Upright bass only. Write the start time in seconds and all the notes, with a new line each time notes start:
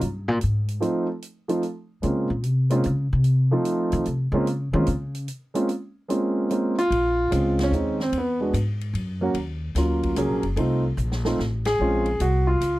0.02 G2
0.28 A#2
0.43 G#2
2.03 C#3
2.30 A#2
2.45 C3
2.86 C#3
3.13 C3
3.93 D#3
4.07 C3
4.32 C#3
4.74 D#3
4.88 C#3
6.90 A#1
7.32 C#2
7.71 D#2
8.12 E2
8.53 G#2
8.94 F#2
9.34 D#2
9.75 D2
10.17 C#2
10.29 A#1
10.43 F#1
10.56 C2
10.97 A#1
11.39 A1
11.79 A#1
12.20 C2
12.61 C#2